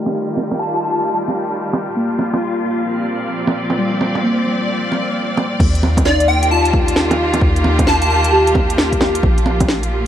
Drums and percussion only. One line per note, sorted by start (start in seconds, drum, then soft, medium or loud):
0.06 low bongo soft
0.37 low bongo soft
0.51 low bongo soft
1.28 low bongo soft
1.73 low bongo medium
2.19 low bongo soft
2.34 low bongo soft
3.47 low bongo medium
3.70 low bongo soft
4.01 low bongo soft
4.15 low bongo soft
4.92 low bongo soft
5.37 low bongo medium
5.60 kick loud
5.60 crash loud
5.75 closed hi-hat soft
5.83 low bongo medium
5.97 kick loud
5.97 closed hi-hat medium
5.97 low bongo medium
6.06 snare loud
6.20 closed hi-hat soft
6.43 closed hi-hat medium
6.65 closed hi-hat soft
6.73 kick loud
6.88 closed hi-hat medium
6.96 snare loud
7.11 closed hi-hat soft
7.11 low bongo medium
7.34 closed hi-hat medium
7.34 low bongo medium
7.41 kick loud
7.56 closed hi-hat soft
7.64 low bongo medium
7.79 kick loud
7.79 closed hi-hat medium
7.79 low bongo medium
7.87 snare loud
8.02 closed hi-hat soft
8.24 closed hi-hat medium
8.47 closed hi-hat soft
8.55 kick loud
8.55 low bongo soft
8.70 closed hi-hat medium
8.78 snare loud
8.92 kick medium
8.92 closed hi-hat soft
9.01 snare medium
9.01 low bongo medium
9.15 closed hi-hat medium
9.23 kick loud
9.38 closed hi-hat soft
9.46 low bongo soft
9.60 kick loud
9.60 closed hi-hat medium
9.60 low bongo medium
9.68 snare loud
9.83 closed hi-hat soft